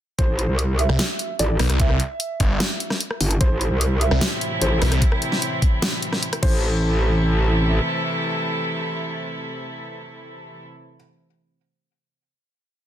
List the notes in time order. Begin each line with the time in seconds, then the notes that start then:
0.18 A1 C5, kick, closed hi-hat
0.29 A1
0.39 closed hi-hat
0.49 C2
0.59 closed hi-hat
0.79 E5, closed hi-hat
0.89 C2, cross-stick
0.99 snare, closed hi-hat
1.19 closed hi-hat
1.39 A1 D5, closed hi-hat
1.59 B1, cross-stick, open hi-hat
1.70 C2, cross-stick, closed hi-hat
1.80 E5, kick, closed hi-hat
1.90 cross-stick
2.00 closed hi-hat
2.20 closed hi-hat
2.40 G1, kick, closed hi-hat
2.60 snare, closed hi-hat
2.80 closed hi-hat
2.90 cross-stick, snare
3.00 closed hi-hat
3.11 cross-stick
3.21 G1, open hi-hat
3.31 closed hi-hat
3.41 A1 A2 C3 E3 C4 E4 C5, kick, closed hi-hat
3.51 A1
3.61 closed hi-hat
3.71 C2
3.81 closed hi-hat
4.01 E5, closed hi-hat
4.11 C2, cross-stick
4.21 snare, closed hi-hat
4.41 closed hi-hat
4.61 A1 C5, closed hi-hat
4.82 B1, cross-stick, open hi-hat
4.92 C2, cross-stick, closed hi-hat
5.02 kick, closed hi-hat
5.12 cross-stick
5.22 closed hi-hat
5.32 snare
5.42 closed hi-hat
5.62 kick, closed hi-hat
5.82 snare, closed hi-hat
6.03 closed hi-hat
6.13 cross-stick, snare
6.23 closed hi-hat
6.33 cross-stick, closed hi-hat
6.42 A1 C3 E3 A3 E4 A4 C5, kick, crash